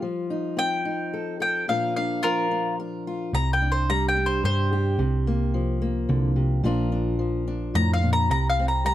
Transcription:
0.00 1.67 F3 medium
0.00 0.30 F4 medium
0.30 0.84 D#4 medium
0.57 1.64 C4 medium
0.57 1.38 G5 loud
0.85 1.65 D#4 medium
1.14 1.39 A4 medium
1.40 1.65 A4 medium
1.40 1.68 G5 medium
1.68 3.30 A#2 medium
1.68 2.23 F3 medium
1.68 1.97 D4 medium
1.68 3.06 F4 medium
1.68 2.78 A#4 medium
1.68 1.95 F5 medium
1.96 2.51 D4 medium
1.96 2.23 F5 medium
2.23 3.34 F3 medium
2.23 2.74 F4 medium
2.23 2.77 A#4 loud
2.51 3.31 D4 medium
2.80 3.31 A#4 medium
3.07 3.31 F4 medium
3.33 4.40 C2 medium
3.33 4.98 C3 medium
3.33 3.52 A#5 medium
3.53 3.71 G5 medium
3.62 4.15 D4 medium
3.72 3.89 C5 medium
3.90 4.96 G3 medium
3.90 4.07 A#5 medium
4.09 4.26 G5 medium
4.17 4.96 D4 medium
4.26 4.44 C5 medium
4.44 4.96 G2 medium
4.44 4.71 G4 medium
4.44 6.06 C5 medium
4.73 5.00 G4 medium
4.99 6.05 C2 medium
4.99 5.54 C3 medium
5.27 5.81 A#3 medium
5.54 6.63 F3 medium
5.82 6.65 A#3 medium
6.09 6.62 C2 loud
6.09 6.36 D3 medium
6.36 6.64 C3 medium
6.63 7.71 A#1 medium
6.63 7.74 A#2 medium
6.63 7.18 F3 medium
6.63 6.91 D4 medium
6.63 8.27 F4 medium
6.63 8.28 A#4 medium
6.92 7.46 D4 medium
7.19 8.30 F3 medium
7.48 8.27 D4 medium
7.74 8.27 F2 medium
7.74 8.02 A2 medium
7.74 7.93 A#5 loud
7.94 8.11 F5 medium
8.02 8.30 A#2 medium
8.13 8.30 A#5 medium
8.30 8.94 C2 medium
8.30 8.94 C3 medium
8.30 8.48 A#5 medium
8.50 8.67 F5 medium
8.59 8.94 C4 medium
8.68 8.85 A#5 medium
8.85 8.94 G3 medium
8.85 8.94 A#5 loud

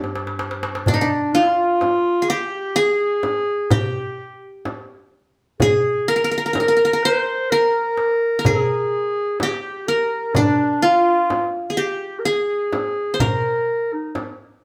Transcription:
0.00 0.97 G2 medium
0.00 0.64 G4 loud
0.00 darbuka ka medium
0.15 darbuka tek medium
0.27 darbuka ka medium
0.39 darbuka tek medium
0.51 darbuka ka medium
0.63 darbuka tek medium
0.75 darbuka ka loud
0.86 1.00 D4 medium
0.86 darbuka dum medium
0.86 frame drum medium
0.94 1.07 D#4 medium
1.01 1.35 D4 medium
1.01 2.50 D4 medium
1.33 2.31 F4 medium
1.33 2.69 F4 medium
1.33 darbuka ka soft
1.81 darbuka tek medium
1.81 frame drum medium
2.22 2.36 G#4 medium
2.29 2.80 G4 medium
2.29 2.82 G4 medium
2.76 3.77 G#4 medium
2.76 3.72 G#4 medium
2.76 darbuka ka soft
3.23 darbuka tek medium
3.23 frame drum medium
3.70 4.97 G4 medium
3.70 4.62 G4 medium
3.70 frame drum loud
3.70 darbuka dum medium
4.65 darbuka tek medium
4.65 frame drum medium
5.60 6.11 G#4 medium
5.60 6.84 G#4 medium
5.60 darbuka dum medium
5.60 frame drum medium
6.08 6.16 A#4 medium
6.08 7.05 A#4 medium
6.08 darbuka ka soft
6.16 6.24 A#4 medium
6.24 6.31 A#4 medium
6.31 6.37 A#4 medium
6.38 6.45 A#4 medium
6.46 6.53 A#4 medium
6.53 6.60 A#4 medium
6.53 darbuka tek medium
6.53 frame drum medium
6.60 6.68 A#4 medium
6.68 6.76 A#4 medium
6.77 6.84 A#4 medium
6.85 6.93 A#4 medium
6.93 7.52 A#4 medium
7.04 7.52 C5 medium
7.04 8.11 C5 medium
7.51 8.47 A#4 medium
7.51 8.39 A#4 medium
7.51 darbuka ka soft
7.97 darbuka tek medium
8.39 9.52 A#4 medium
8.45 9.41 G#4 medium
8.45 9.49 G#4 medium
8.45 frame drum medium
8.45 darbuka dum medium
9.40 9.49 G4 medium
9.40 10.68 G4 medium
9.40 darbuka tek medium
9.40 frame drum medium
9.48 9.55 G#4 medium
9.53 9.89 G4 medium
9.87 10.36 A#4 medium
9.87 11.02 A#4 medium
10.34 10.85 D4 medium
10.34 11.86 D4 medium
10.34 frame drum medium
10.34 darbuka dum medium
10.82 12.17 F4 medium
10.82 11.51 F4 medium
10.82 darbuka ka soft
11.30 darbuka tek medium
11.30 frame drum medium
11.70 11.83 G#4 medium
11.77 12.31 G4 medium
11.77 12.21 G4 medium
12.19 12.27 A#4 medium
12.25 13.47 G#4 medium
12.25 13.20 G#4 medium
12.25 darbuka ka soft
12.73 darbuka tek medium
12.73 frame drum medium
13.14 14.19 C5 medium
13.20 14.34 A#4 medium
13.20 13.94 A#4 medium
13.20 darbuka dum medium
13.20 frame drum medium
13.93 14.16 D#4 medium
14.15 darbuka tek medium
14.15 frame drum medium

